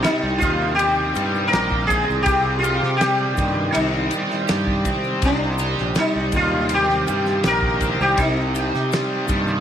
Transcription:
0.00 2.25 C3 medium
0.00 0.78 C4 medium
0.00 0.42 D#4 medium
0.00 1.53 G4 medium
0.00 9.60 G5 medium
0.00 9.60 C6 medium
0.00 9.60 D#6 medium
0.04 1.15 G3 medium
0.04 snare loud
0.04 ride medium
0.04 shaker medium
0.23 0.40 C2 medium
0.38 1.12 D#2 medium
0.38 2.26 D#3 medium
0.38 0.74 F4 medium
0.38 kick medium
0.38 shaker loud
0.43 ride medium
0.75 1.89 C4 medium
0.75 1.47 G4 loud
0.75 shaker medium
0.79 ride medium
1.15 1.49 G2 medium
1.15 3.00 G3 medium
1.15 ride medium
1.15 shaker medium
1.35 shaker soft
1.48 1.86 A#4 loud
1.53 2.04 A#1 loud
1.53 2.62 G4 medium
1.53 snare loud
1.53 ride medium
1.53 shaker medium
1.71 kick medium
1.87 3.73 C4 medium
1.87 2.22 G#4 loud
1.87 kick medium
1.87 ride medium
1.87 shaker medium
2.10 2.79 C2 medium
2.10 shaker soft
2.23 5.22 C3 medium
2.23 2.58 G4 loud
2.23 kick loud
2.23 ride loud
2.28 shaker medium
2.59 2.95 F4 medium
2.59 4.47 G4 medium
2.64 ride medium
2.64 shaker loud
2.83 3.34 C3 medium
2.83 snare soft
2.97 3.75 G4 medium
3.01 4.11 G3 medium
3.01 snare loud
3.01 ride loud
3.01 shaker medium
3.37 3.71 G2 medium
3.37 5.22 D#3 medium
3.37 kick medium
3.37 ride medium
3.37 shaker medium
3.72 4.09 C2 medium
3.72 4.84 C4 medium
3.72 4.80 D#4 medium
3.72 ride loud
3.72 shaker medium
4.11 5.95 G3 medium
4.11 ride medium
4.11 shaker medium
4.31 snare soft
4.31 shaker soft
4.48 4.83 G2 medium
4.48 5.59 G4 medium
4.48 snare loud
4.48 ride loud
4.48 shaker medium
4.67 kick medium
4.85 6.70 C4 medium
4.85 kick medium
4.85 ride medium
4.85 shaker medium
5.04 shaker soft
5.22 5.74 C2 medium
5.22 8.17 C3 medium
5.22 5.98 D4 medium
5.22 kick loud
5.22 ride loud
5.22 shaker medium
5.58 7.43 G4 medium
5.58 ride medium
5.58 shaker loud
5.78 5.96 A#1 medium
5.78 snare soft
5.95 7.07 G3 medium
5.95 6.36 D#4 medium
5.95 snare loud
5.95 ride loud
5.95 shaker medium
6.16 6.32 C2 medium
6.32 7.03 D#2 medium
6.32 8.18 D#3 medium
6.32 kick medium
6.32 ride medium
6.32 shaker loud
6.36 6.73 F4 medium
6.69 7.79 C4 medium
6.69 ride medium
6.69 shaker medium
6.74 7.47 G4 loud
6.89 snare soft
7.07 7.41 G2 medium
7.07 8.90 G3 medium
7.07 ride medium
7.07 shaker loud
7.26 snare soft
7.26 shaker soft
7.43 7.96 A#1 loud
7.43 8.53 G4 medium
7.43 8.01 A#4 loud
7.43 snare loud
7.43 ride medium
7.43 shaker medium
7.62 kick medium
7.80 9.60 C4 medium
7.80 kick medium
7.80 ride medium
7.80 shaker medium
8.00 8.70 C2 loud
8.00 8.20 G4 medium
8.00 shaker soft
8.17 9.60 C3 medium
8.17 9.60 D#4 medium
8.17 kick loud
8.17 ride medium
8.17 shaker medium
8.54 9.60 G4 medium
8.54 ride medium
8.54 shaker loud
8.75 9.26 C3 medium
8.75 snare soft
8.75 shaker soft
8.91 9.60 G3 medium
8.91 snare loud
8.91 ride medium
8.91 shaker medium
9.28 9.60 G2 medium
9.28 9.60 D#3 medium
9.28 kick medium
9.28 ride medium
9.28 shaker loud
9.47 shaker soft

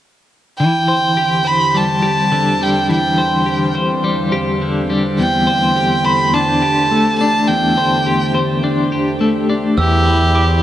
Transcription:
0.58 9.74 E2 medium
0.58 5.15 D3 medium
0.58 2.03 E3 soft
0.58 5.15 C4 medium
0.58 2.87 G4 medium
0.58 9.74 C5 medium
0.58 1.49 G5 medium
0.88 1.44 C5 soft
1.17 2.02 G4 soft
1.45 3.17 C5 soft
1.45 1.79 B5 medium
1.74 2.61 G3 soft
1.74 2.64 A5 medium
2.02 3.46 G4 soft
2.32 3.76 D3 soft
2.61 4.04 G3 soft
2.61 2.90 G5 soft
2.89 4.33 E3 soft
2.89 5.17 F5 medium
2.89 3.73 G5 medium
3.18 3.74 C5 soft
3.46 4.32 G4 soft
3.75 5.47 C5 soft
4.04 4.90 G3 soft
4.32 5.76 G4 soft
4.62 5.19 D3 soft
4.90 6.33 G3 soft
5.19 6.63 E2 soft
5.19 9.75 D3 medium
5.19 9.75 A3 medium
5.19 9.75 G4 medium
5.19 6.07 G5 medium
5.47 6.05 C5 soft
5.76 6.62 G4 soft
6.05 7.77 C5 soft
6.05 6.35 B5 medium
6.34 7.20 D4 soft
6.34 7.18 A5 medium
6.62 8.05 G4 soft
6.91 8.35 A3 soft
7.18 8.63 D4 soft
7.18 7.49 A5 medium
7.47 8.93 E2 soft
7.47 8.34 G5 medium
7.78 8.33 C5 soft
8.06 8.91 G4 soft
8.35 9.78 C5 soft
8.64 9.48 D4 soft
8.92 9.78 G4 soft
9.21 9.78 A3 soft
9.50 9.78 D4 soft
9.77 10.63 E2 medium
9.77 10.63 E3 soft
9.77 10.63 G4 medium
9.77 10.61 G4 medium
9.77 10.63 C5 medium
9.77 10.63 D5 medium
9.77 10.63 C6 medium
9.77 10.35 E6 medium
10.06 10.63 E4 medium
10.35 10.63 G4 soft
10.35 10.63 D6 medium

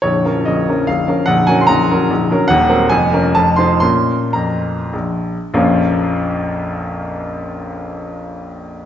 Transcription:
0.02 0.23 A#0 soft
0.02 0.23 A#1 soft
0.02 0.45 C#5 medium
0.25 0.44 F3 soft
0.25 0.44 C#4 soft
0.25 0.44 A#4 soft
0.45 0.67 A#0 soft
0.45 0.67 A#1 soft
0.45 0.87 D#5 medium
0.69 0.86 F3 soft
0.69 0.86 C#4 soft
0.69 0.86 A#4 soft
0.87 1.07 A#0 soft
0.87 1.07 A#1 soft
0.87 1.27 F5 medium
1.08 1.25 F3 soft
1.08 1.25 C#4 soft
1.08 1.26 A#4 soft
1.26 1.47 A#0 medium
1.26 1.47 A#1 medium
1.26 1.47 F#5 medium
1.47 1.67 F#3 soft
1.47 1.67 C#4 soft
1.47 1.67 A#4 soft
1.47 1.61 G#5 medium
1.61 1.69 C6 medium
1.67 1.89 A#0 medium
1.67 1.89 A#1 medium
1.67 2.48 A#5 medium
1.91 2.09 F#3 soft
1.91 2.09 C#4 soft
1.91 2.09 A#4 medium
2.10 2.29 A#0 medium
2.10 2.29 A#1 medium
2.31 2.47 F#3 soft
2.31 2.48 C#4 soft
2.31 2.48 A#4 medium
2.48 2.68 D#1 medium
2.48 2.68 D#2 medium
2.48 2.89 F#5 medium
2.70 2.88 F#3 medium
2.70 2.88 C4 medium
2.70 2.89 A#4 medium
2.90 3.13 F1 medium
2.90 3.12 F2 medium
2.90 3.34 G#5 medium
3.13 3.33 F3 soft
3.13 3.33 C#4 soft
3.13 3.33 A#4 medium
3.35 3.57 F1 medium
3.35 3.57 F2 medium
3.35 3.57 A5 medium
3.56 3.79 F3 soft
3.56 3.80 D#4 soft
3.56 3.80 C5 soft
3.56 3.79 C6 medium
3.80 4.19 A#2 medium
3.80 4.24 C#4 soft
3.80 4.25 A#4 soft
3.80 4.34 C6 medium
4.33 4.75 F2 soft
4.33 4.92 A#5 medium
4.93 5.35 A#1 soft
5.54 8.86 A#1 medium
5.54 8.86 F2 medium
5.54 8.86 F3 medium
5.54 8.86 A#3 medium
5.54 8.86 C#4 medium
5.54 8.86 F4 medium

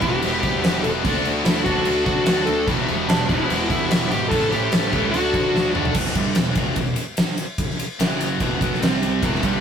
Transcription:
0.01 0.21 E1 loud
0.01 0.63 E2 medium
0.01 0.63 B2 medium
0.01 0.62 E3 medium
0.01 1.05 G3 medium
0.01 1.04 B3 medium
0.01 1.03 E4 medium
0.01 0.40 G4 loud
0.01 kick medium
0.01 crash medium
0.22 0.43 E1 loud
0.22 crash medium
0.41 0.62 E2 medium
0.41 0.84 G4 loud
0.41 kick medium
0.41 crash medium
0.64 0.83 E1 medium
0.64 1.03 E2 medium
0.64 1.04 B2 medium
0.64 1.04 E3 loud
0.64 snare loud
0.64 crash medium
0.83 1.03 E1 loud
0.83 0.89 A4 medium
0.83 crash medium
1.05 1.24 D2 loud
1.05 1.65 D3 loud
1.05 1.65 A3 medium
1.05 1.65 D4 loud
1.05 1.64 F#4 loud
1.05 kick loud
1.05 crash medium
1.25 1.44 D2 loud
1.25 crash medium
1.45 1.64 D2 loud
1.45 1.64 E4 medium
1.45 snare loud
1.45 crash medium
1.64 1.85 D2 loud
1.64 2.27 A3 medium
1.64 2.26 D4 medium
1.64 2.04 F#4 loud
1.64 2.66 F#4 loud
1.64 kick medium
1.64 crash medium
1.68 2.26 D3 medium
1.85 2.05 D2 loud
1.85 crash medium
2.05 2.25 D3 medium
2.05 2.48 F#4 loud
2.05 kick medium
2.05 crash medium
2.26 2.46 D2 medium
2.26 2.66 D3 medium
2.26 2.67 A3 medium
2.26 2.67 D4 loud
2.26 snare loud
2.26 crash medium
2.45 2.66 D2 loud
2.45 2.65 A4 loud
2.45 crash medium
2.67 2.87 E1 loud
2.67 3.27 E2 loud
2.67 3.28 B2 loud
2.67 3.28 E3 loud
2.67 3.28 G3 loud
2.67 3.29 B3 loud
2.67 3.28 E4 loud
2.67 kick loud
2.67 crash medium
2.88 3.07 E1 loud
2.88 crash medium
3.08 3.27 E1 medium
3.08 3.30 D4 medium
3.08 snare loud
3.08 crash medium
3.28 3.48 E1 loud
3.28 3.88 E2 medium
3.28 3.90 B2 medium
3.28 3.89 E3 loud
3.28 4.31 G3 medium
3.28 4.30 B3 medium
3.28 3.69 E4 medium
3.28 4.30 E4 medium
3.28 kick medium
3.28 crash medium
3.48 3.68 E1 loud
3.48 crash medium
3.70 3.89 E2 medium
3.70 4.11 E4 loud
3.70 kick medium
3.70 crash medium
3.90 4.09 E1 medium
3.90 4.29 E2 medium
3.90 4.30 B2 medium
3.90 4.30 E3 medium
3.90 snare loud
3.90 crash medium
4.10 4.29 G#1 loud
4.10 4.32 G4 loud
4.10 crash medium
4.28 4.50 A1 loud
4.28 4.90 A2 medium
4.28 4.91 E3 loud
4.28 4.51 A4 loud
4.28 kick loud
4.28 crash medium
4.33 4.91 A3 medium
4.33 4.92 C#4 loud
4.33 4.92 E4 loud
4.51 4.70 A1 loud
4.51 5.11 G4 medium
4.51 crash medium
4.72 4.90 A1 loud
4.72 snare loud
4.72 crash medium
4.92 5.12 C#2 loud
4.92 5.12 A2 medium
4.92 5.12 E3 medium
4.92 5.11 A3 medium
4.92 5.12 C#4 medium
4.92 5.12 E4 medium
4.92 kick medium
4.92 crash medium
5.11 5.31 D2 loud
5.11 5.72 D3 loud
5.11 5.73 A3 loud
5.11 5.73 D4 loud
5.11 5.69 F#4 medium
5.11 crash medium
5.16 5.72 F#4 loud
5.34 5.52 D3 medium
5.34 kick medium
5.34 crash medium
5.54 5.73 D2 medium
5.54 snare medium
5.74 5.93 D#2 medium
5.74 5.94 D3 medium
5.74 5.94 A3 medium
5.74 5.93 D4 medium
5.74 5.93 F#4 medium
5.74 mid tom medium
5.85 floor tom loud
5.94 6.14 E1 loud
5.94 6.14 E2 medium
5.94 6.15 B2 loud
5.94 6.15 E3 loud
5.94 kick loud
5.94 crash loud
6.06 snare soft
6.15 6.34 G1 loud
6.15 6.34 G2 medium
6.15 6.35 D3 medium
6.15 6.35 G3 medium
6.15 kick loud
6.15 ride medium
6.35 6.55 E1 medium
6.35 6.51 E2 medium
6.35 6.52 B2 medium
6.35 snare loud
6.35 ride loud
6.55 6.75 E1 loud
6.55 6.75 E2 loud
6.55 6.75 B2 loud
6.55 6.76 E3 loud
6.55 kick loud
6.55 ride medium
6.76 6.95 E1 medium
6.76 6.93 E2 medium
6.76 6.93 B2 medium
6.76 kick medium
6.76 ride loud
6.96 ride medium
7.17 snare loud
7.17 ride loud
7.38 ride medium
7.58 kick loud
7.58 ride loud
7.70 snare soft
7.79 ride medium
8.00 8.38 F#1 loud
8.00 8.40 F#2 loud
8.00 8.40 C#3 loud
8.00 8.40 F#3 loud
8.00 snare loud
8.00 ride loud
8.21 ride medium
8.40 8.59 E1 medium
8.40 8.60 E2 medium
8.40 8.60 B2 loud
8.40 8.61 E3 loud
8.40 kick loud
8.40 ride medium
8.61 8.80 B1 medium
8.61 8.82 B2 loud
8.61 8.83 F#3 loud
8.61 8.83 B3 loud
8.61 kick loud
8.61 ride medium
8.74 snare soft
8.81 9.19 C2 medium
8.81 9.22 C3 loud
8.81 9.22 G3 medium
8.81 9.22 C4 loud
8.81 snare loud
8.81 ride loud
9.03 ride medium
9.23 9.42 E1 loud
9.23 9.42 E2 medium
9.23 9.43 B2 loud
9.23 9.43 E3 loud
9.23 kick loud
9.23 ride medium
9.35 snare soft
9.43 9.61 G1 loud
9.43 9.61 G2 medium
9.43 9.61 D3 loud
9.43 9.61 G3 loud
9.43 kick loud
9.43 ride medium

